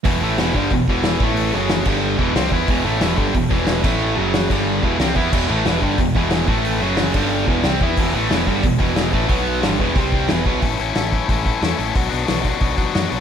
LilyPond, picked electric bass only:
\new Staff \with { instrumentName = "Picked electric bass" } { \clef bass \time 4/4 \key e \minor \tempo 4 = 182 e,,8 a,,8 e,,8 g,,8 e,,8 e,,4 a,,8~ | a,,8 fis,,4 g,,4 e,,8 c,8 e,8 | e,,8 a,,8 e,,8 g,,8 e,,8 e,,4 a,,8~ | a,,8 fis,,4 g,,4 e,,8 c,8 e,8 |
e,,8 a,,8 e,,8 g,,8 e,,8 e,,4 a,,8~ | a,,8 fis,,4 g,,4 e,,8 c,8 e,8 | e,,8 a,,8 e,,8 g,,8 e,,8 e,,4 a,,8 | b,,4 g,,8 e,,8 c,4 e,,8 b,,8 |
\key a \mixolydian a,,8 a,,8 a,,4 a,,4 e,8 a,,8 | b,,8 b,,8 b,,4 b,,4 fis,8 b,,8 | }